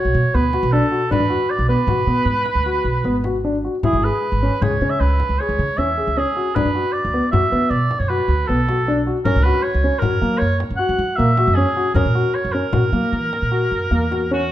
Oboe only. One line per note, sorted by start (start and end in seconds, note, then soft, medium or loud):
0.00 0.36 C#5 medium
0.35 0.73 B4 medium
0.72 1.10 A4 medium
1.11 1.52 B4 medium
1.50 1.68 D5 medium
1.69 3.40 B4 medium
3.85 4.05 G#4 medium
4.04 4.64 B4 medium
4.62 4.92 C#5 medium
4.90 5.02 E5 medium
5.00 5.41 B4 medium
5.40 5.79 C#5 medium
5.78 6.19 E5 medium
6.18 6.56 G#4 medium
6.55 6.94 B4 medium
6.92 7.31 D5 medium
7.32 7.71 E5 medium
7.70 8.01 D5 medium
7.99 8.11 C#5 medium
8.09 8.48 B4 medium
8.47 9.05 A4 medium
9.24 9.45 A#4 medium
9.43 9.64 B4 medium
9.63 10.01 C#5 medium
9.99 10.40 A#4 medium
10.38 10.59 C#5 medium
10.77 11.18 F#5 medium
11.16 11.56 E5 medium
11.55 11.94 G#4 medium
11.95 12.36 A#4 medium
12.35 12.54 C#5 medium
12.52 14.31 A#4 medium
14.33 14.52 F#4 medium